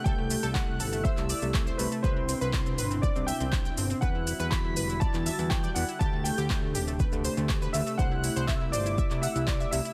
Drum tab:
HH |--o---o---o---o-|--o---o---o---o-|--o---o---o---o-|--o---o---o---o-|
SH |x-xxx-xxxxxxxxxx|x-xxxxxxxxxxxxxx|x-xxx-xxxxxxxxxx|x-xxx-xxxxxxxxxx|
CP |----x----x--x---|----x-------x---|----x----x--x---|----x-------x---|
BD |o---o---o---o---|o---o---o---o---|o---o---o---o---|o---o---o---o---|

HH |--o---o---o---o-|
SH |x-xxx-xxxxxxxxxx|
CP |----x----x--x---|
BD |o---o---o---o---|